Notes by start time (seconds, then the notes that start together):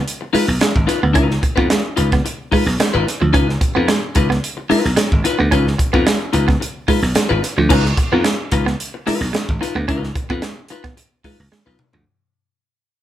0.08 closed hi-hat
0.21 muted clean electric guitar stroke
0.33 G#3 D#4 F4 B4, muted slap bass stroke, open hi-hat
0.47 B1, muted clean electric guitar stroke
0.60 G#3, muted clean electric guitar stroke, snare, closed hi-hat
0.76 G#1, kick
0.87 D#4 F4 B4, muted clean electric guitar stroke, snare, closed hi-hat
1.01 D2 B3, muted clean electric guitar stroke
1.13 C#2 C#4 D#4 F4 B4, kick, closed hi-hat
1.28 muted clean electric guitar stroke, snare
1.42 muted clean electric guitar stroke, kick, closed hi-hat
1.56 F2 B3 D#4 F4 B4, kick
1.69 G#3, muted clean electric guitar stroke, snare, closed hi-hat
1.96 C#2 D#4 F4 B4, muted clean electric guitar stroke, closed hi-hat
2.12 B3, muted clean electric guitar stroke, kick, snare
2.25 muted clean electric guitar stroke, closed hi-hat
2.52 G#3 D#4 F4 B4, muted slap bass stroke, kick, open hi-hat
2.66 B1, muted clean electric guitar stroke, snare
2.80 G#3, muted clean electric guitar stroke, muted slap bass stroke, snare, closed hi-hat
2.94 G#1 D#4 F4 B4, muted clean electric guitar stroke
3.06 muted clean electric guitar stroke, snare, closed hi-hat
3.21 D2 F3, muted clean electric guitar stroke
3.33 C#2 C#4 D#4 F4 B4, kick, closed hi-hat
3.48 muted clean electric guitar stroke, snare
3.61 muted clean electric guitar stroke, kick, closed hi-hat
3.75 F2 B3 D#4 F4 B4
3.88 G#3, muted clean electric guitar stroke, snare, closed hi-hat
4.15 C#2 D#4 F4 B4, muted clean electric guitar stroke, kick, closed hi-hat
4.30 B3, muted clean electric guitar stroke, snare
4.44 closed hi-hat
4.57 muted clean electric guitar stroke
4.70 G#3 D#4 F4 B4, muted slap bass stroke, open hi-hat
4.85 B1, muted clean electric guitar stroke, snare
4.96 G#3, muted clean electric guitar stroke, muted slap bass stroke, snare, closed hi-hat
5.12 G#1, kick
5.24 D#4 F4 B4, muted clean electric guitar stroke, snare, closed hi-hat
5.39 D2 B3, muted clean electric guitar stroke
5.51 C#2 C#4 D#4 F4 B4, kick, closed hi-hat
5.67 muted clean electric guitar stroke, snare
5.79 muted clean electric guitar stroke, kick, closed hi-hat
5.93 F2 B3 D#4 F4 B4, kick
6.06 G#3, muted clean electric guitar stroke, snare, closed hi-hat
6.33 C#2 D#4 F4 B4, muted clean electric guitar stroke, closed hi-hat
6.48 B3, muted clean electric guitar stroke, kick, snare
6.60 muted clean electric guitar stroke, closed hi-hat
6.88 G#3 D#4 F4 B4, muted slap bass stroke, kick, open hi-hat
7.02 B1, muted clean electric guitar stroke, snare
7.15 G#3, muted clean electric guitar stroke, muted slap bass stroke, snare, closed hi-hat
7.29 G#1 D#4 F4 B4, muted clean electric guitar stroke
7.43 muted clean electric guitar stroke, snare, closed hi-hat
7.57 D2 F3, muted clean electric guitar stroke
7.69 C#2 C#4 D#4 F4 B4, kick, crash
7.85 muted clean electric guitar stroke, snare
7.97 muted clean electric guitar stroke, kick, closed hi-hat
8.12 F2 B3 D#4 F4 B4
8.24 G#3, muted clean electric guitar stroke, snare, closed hi-hat
8.52 C#2 D#4 F4 B4, muted clean electric guitar stroke, kick, closed hi-hat
8.66 B3, muted clean electric guitar stroke, snare
8.80 closed hi-hat
8.94 muted clean electric guitar stroke
9.07 G#3 D#4 F4 B4, muted slap bass stroke, open hi-hat
9.21 B1, muted clean electric guitar stroke, snare
9.33 G#3, muted clean electric guitar stroke, muted slap bass stroke, snare, closed hi-hat
9.49 G#1, kick
9.61 D#4 F4 B4, muted clean electric guitar stroke, snare, closed hi-hat
9.75 D2 B3, muted clean electric guitar stroke
9.88 C#2 C#4 D#4 F4 B4, kick, closed hi-hat
10.03 muted clean electric guitar stroke, snare
10.16 muted clean electric guitar stroke, kick, closed hi-hat
10.30 F2 B3 D#4 F4 B4, kick
10.42 G#3, muted clean electric guitar stroke, snare, closed hi-hat
10.68 D#4 F4 B4, muted clean electric guitar stroke, closed hi-hat
10.84 B3, muted clean electric guitar stroke, kick, snare
10.97 muted clean electric guitar stroke, closed hi-hat
11.24 G#3 D#4 F4 B4, muted slap bass stroke, kick, open hi-hat
11.39 C#2, muted clean electric guitar stroke
11.52 G#3, muted clean electric guitar stroke, snare
11.66 B1 D#4 F4 B4, muted clean electric guitar stroke
11.79 muted clean electric guitar stroke, mid tom
11.93 D2 F3, muted clean electric guitar stroke, floor tom